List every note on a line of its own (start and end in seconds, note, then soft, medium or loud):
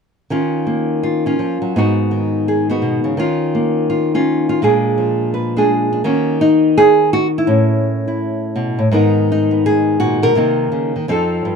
0.30 1.38 D#3 medium
0.30 1.25 C#4 medium
0.30 1.02 F4 medium
0.67 1.76 A#3 medium
1.03 1.26 F4 medium
1.26 1.73 C#4 medium
1.26 1.75 F4 medium
1.39 1.61 F3 medium
1.62 1.74 F#3 medium
1.76 3.17 G#2 medium
1.76 2.68 B3 medium
1.76 2.69 D#4 medium
1.76 2.48 F#4 medium
2.11 3.16 D#3 soft
2.48 2.70 G#4 medium
2.70 3.16 B3 medium
2.70 3.17 D#4 medium
2.70 3.17 F#4 medium
2.82 3.04 B2 medium
3.04 3.17 C#3 medium
3.17 4.61 D#3 medium
3.17 4.13 C#4 medium
3.17 3.89 F4 medium
3.55 4.62 A#3 medium
3.90 4.15 F4 medium
4.15 4.61 C#4 medium
4.15 4.49 F4 medium
4.49 4.64 F4 medium
4.62 6.05 A#2 medium
4.62 5.55 G#3 medium
4.62 5.55 D4 medium
4.62 5.33 G#4 medium
4.98 6.04 F3 soft
5.34 5.56 B4 medium
5.56 6.04 G#3 medium
5.56 5.91 D4 medium
5.56 6.04 G#4 medium
5.93 6.04 D4 medium
6.04 7.48 D#3 medium
6.04 7.46 A#3 medium
6.04 6.41 C#4 soft
6.04 6.77 F#4 soft
6.41 7.13 D#4 medium
6.78 7.13 G#4 loud
7.13 7.27 F#4 loud
7.38 8.06 E4 medium
7.47 8.77 A2 medium
7.47 8.90 C#4 medium
8.08 8.90 E4 soft
8.56 8.79 B2 medium
8.79 8.91 A2 medium
8.91 10.33 G#2 medium
8.91 10.35 D#3 medium
8.91 9.50 B3 medium
8.91 9.31 D#4 soft
8.91 9.65 A#4 medium
9.32 9.99 D#4 medium
9.51 10.34 B3 soft
9.66 10.23 G#4 medium
10.00 10.22 A#2 medium
10.00 10.35 F#4 loud
10.22 10.35 B2 medium
10.22 11.07 A#4 loud
10.35 10.71 C3 medium
10.35 10.94 D#3 soft
10.35 11.06 A#3 medium
10.35 11.06 D#4 medium
10.72 10.94 C#3 medium
10.96 11.08 D#3 medium
11.08 11.43 F2 medium
11.08 11.56 F3 medium
11.08 11.56 C4 medium
11.08 11.56 D#4 medium
11.08 11.56 A4 medium
11.45 11.56 G2 medium